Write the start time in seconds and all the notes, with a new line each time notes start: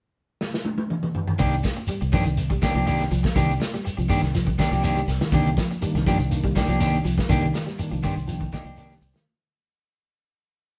0.41 snare
0.54 snare
0.65 high tom
0.78 high tom
0.90 mid tom
1.03 mid tom
1.15 floor tom
1.27 floor tom
1.39 C2 D#3 A#3 D4 G4, muted clean electric guitar stroke, kick, closed hi-hat, shekere
1.52 closed hi-hat, shekere
1.63 muted clean electric guitar stroke, kick, snare, closed hi-hat, shekere
1.76 muted clean electric guitar stroke, closed hi-hat, shekere
1.87 G3, muted clean electric guitar stroke, closed hi-hat, shekere
2.01 C2, muted clean electric guitar stroke, closed hi-hat, shekere
2.12 G2 D#3 F3 A#3 D4 G4, kick, open hi-hat, shekere
2.25 C2 D#3, muted clean electric guitar stroke, closed hi-hat, shekere
2.37 closed hi-hat, shekere
2.50 G3, muted clean electric guitar stroke, kick, shekere
2.62 D#3 A#3 D4 G4, kick, snare, closed hi-hat, shekere
2.75 C2 F3 A#3 D4 G4, closed hi-hat, shekere
2.86 D#3 A#3 D4 G4, closed hi-hat, shekere
3.00 snare, shekere
3.11 C2 F3, muted clean electric guitar stroke, open hi-hat, shekere
3.23 muted clean electric guitar stroke, kick, snare, shekere
3.35 C2 D#3 A#3 D4 G4, kick, snare, closed hi-hat, shekere
3.49 muted clean electric guitar stroke, closed hi-hat, shekere
3.60 muted clean electric guitar stroke, snare, closed hi-hat, shekere
3.74 G3, muted clean electric guitar stroke, snare, closed hi-hat, shekere
3.85 muted clean electric guitar stroke, closed hi-hat, shekere
3.97 C2 F3, muted clean electric guitar stroke, closed hi-hat, shekere
4.09 G2 D#3 A#3 D4 G4, kick, open hi-hat, shekere
4.22 C2, muted clean electric guitar stroke, snare, closed hi-hat, shekere
4.34 F3, snare, closed hi-hat, shekere
4.46 muted clean electric guitar stroke, kick, closed hi-hat, shekere
4.58 D#3 A#3 D4 G4, kick, snare, closed hi-hat, shekere
4.71 C2 F3 A#3 D4 G4, closed hi-hat, shekere
4.83 D#3 A#3 D4 G4, closed hi-hat, shekere
4.96 G3, closed hi-hat, shekere
5.07 C2, muted clean electric guitar stroke, snare, open hi-hat, shekere
5.20 D#3, muted clean electric guitar stroke, snare, closed hi-hat, shekere
5.32 C2 D3 D#3 A#3 D4 G4, kick, closed hi-hat, shekere
5.45 closed hi-hat, shekere
5.57 F3, muted clean electric guitar stroke, kick, snare, closed hi-hat, shekere
5.70 muted clean electric guitar stroke, closed hi-hat, shekere
5.81 D#3 G3 A#3 D4, muted clean electric guitar stroke, closed hi-hat, shekere
5.95 C2, muted clean electric guitar stroke, snare, closed hi-hat, shekere
6.06 G2 D#3 F3 A#3 D4 G4, kick, snare, open hi-hat, shekere
6.19 C2 D#3, muted clean electric guitar stroke, closed hi-hat, shekere
6.30 D#3 A#3 D4, closed hi-hat, shekere
6.44 G3, muted clean electric guitar stroke, kick, shekere
6.55 D#3 A#3 D4 G4, kick, snare, closed hi-hat, shekere
6.68 C2 F3 A#3 D4 G4, closed hi-hat, shekere
6.78 D#3 A#3 D4 G4, closed hi-hat, shekere
6.94 shekere
7.04 C2 F3, muted clean electric guitar stroke, open hi-hat, shekere
7.18 muted clean electric guitar stroke, kick, snare, shekere
7.28 C2 D#3 A#3 D4 G4, kick, snare, closed hi-hat, shekere
7.42 D#3, closed hi-hat, shekere
7.53 muted clean electric guitar stroke, snare, closed hi-hat, shekere
7.66 G3, muted clean electric guitar stroke, snare, closed hi-hat, shekere
7.78 D#3 A#3 D4, muted clean electric guitar stroke, closed hi-hat, shekere
7.91 C2 F3, muted clean electric guitar stroke, closed hi-hat, shekere
8.03 G2 D#3 A#3 D4 G4 C6, kick, open hi-hat, shekere
8.16 C2, muted clean electric guitar stroke, closed hi-hat, shekere
8.26 D#3 F3 A#3 D4 G5, closed hi-hat, shekere
8.40 muted clean electric guitar stroke, kick, closed hi-hat, shekere
8.52 D#3 A#3 D4 G4 D#5, kick, snare, closed hi-hat, shekere
8.65 C2 F3 A#3 D4 G4, closed hi-hat, shekere
8.76 D#3 A#3 D4 G4 D5, closed hi-hat, shekere
8.89 G3, snare, closed hi-hat, shekere
9.01 C2 C5, muted clean electric guitar stroke, open hi-hat, shekere
9.14 D#3, muted clean electric guitar stroke, snare, closed hi-hat, shekere